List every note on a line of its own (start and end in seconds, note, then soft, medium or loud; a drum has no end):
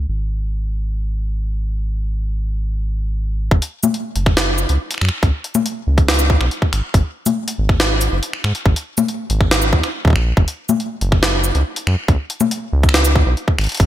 0.08 3.49 G#1 medium
3.51 3.60 F#1 loud
3.51 kick loud
3.62 closed hi-hat loud
3.83 low conga medium
3.83 shaker medium
3.94 closed hi-hat medium
4.16 4.66 F#1 medium
4.16 closed hi-hat medium
4.26 finger snap soft
4.26 kick loud
4.37 snare loud
4.37 closed hi-hat loud
4.58 shaker medium
4.69 4.78 C#2 loud
4.69 closed hi-hat medium
4.91 finger snap soft
4.91 closed hi-hat loud
4.94 finger snap soft
4.98 5.10 F#2 medium
4.98 finger snap soft
5.01 finger snap medium
5.05 finger snap soft
5.09 finger snap soft
5.23 5.32 C#2 loud
5.23 kick loud
5.23 closed hi-hat medium
5.44 closed hi-hat medium
5.55 low conga medium
5.55 shaker medium
5.66 closed hi-hat loud
5.87 6.38 C#2 loud
5.98 kick loud
5.98 closed hi-hat medium
6.08 finger snap medium
6.08 snare loud
6.14 closed hi-hat loud
6.19 shaker medium
6.30 kick loud
6.41 6.49 B1 loud
6.41 finger snap medium
6.51 closed hi-hat medium
6.62 kick loud
6.73 6.82 G#1 medium
6.73 finger snap medium
6.73 closed hi-hat medium
6.94 7.03 G#1 loud
6.94 kick loud
6.94 closed hi-hat medium
7.26 closed hi-hat medium
7.26 low conga medium
7.26 shaker medium
7.48 closed hi-hat loud
7.58 8.09 G#1 medium
7.69 finger snap soft
7.69 kick loud
7.80 snare loud
7.80 closed hi-hat medium
8.01 closed hi-hat medium
8.01 shaker medium
8.12 8.21 F#1 loud
8.23 closed hi-hat medium
8.33 finger snap soft
8.44 8.53 G#2 medium
8.44 finger snap medium
8.55 closed hi-hat medium
8.66 8.74 G#1 loud
8.66 kick loud
8.76 closed hi-hat medium
8.98 low conga medium
8.98 shaker medium
9.08 closed hi-hat medium
9.30 9.74 G#1 medium
9.30 closed hi-hat medium
9.41 finger snap soft
9.41 kick loud
9.51 finger snap medium
9.51 snare loud
9.51 closed hi-hat medium
9.62 shaker medium
9.73 9.82 D#2 medium
9.73 kick loud
9.84 finger snap soft
9.84 closed hi-hat medium
10.05 10.14 D#2 medium
10.05 kick loud
10.08 kick medium
10.10 kick medium
10.13 10.33 A#1 medium
10.13 finger snap medium
10.13 kick medium
10.37 10.46 F#1 loud
10.37 kick loud
10.48 closed hi-hat medium
10.69 low conga medium
10.69 shaker medium
10.80 closed hi-hat medium
11.01 11.52 F#1 medium
11.01 closed hi-hat medium
11.12 finger snap soft
11.12 kick loud
11.23 snare loud
11.23 closed hi-hat medium
11.44 shaker medium
11.55 11.64 C#2 medium
11.55 closed hi-hat soft
11.76 closed hi-hat medium
11.87 11.96 F#2 medium
11.87 finger snap medium
12.08 12.17 C#2 loud
12.08 kick loud
12.08 closed hi-hat medium
12.30 closed hi-hat medium
12.41 low conga loud
12.41 shaker medium
12.51 closed hi-hat medium
12.73 13.23 C#2 medium
12.83 kick loud
12.83 closed hi-hat soft
12.89 finger snap medium
12.94 snare loud
13.05 closed hi-hat medium
13.05 shaker medium
13.16 kick loud
13.26 13.35 B1 loud
13.37 closed hi-hat soft
13.48 kick loud
13.58 13.67 G#1 medium
13.58 finger snap medium
13.58 closed hi-hat soft
13.61 closed hi-hat soft
13.64 closed hi-hat soft
13.67 closed hi-hat soft
13.69 closed hi-hat medium
13.72 closed hi-hat medium
13.75 closed hi-hat medium
13.77 13.86 G#1 loud
13.77 kick loud
13.77 closed hi-hat medium
13.80 closed hi-hat medium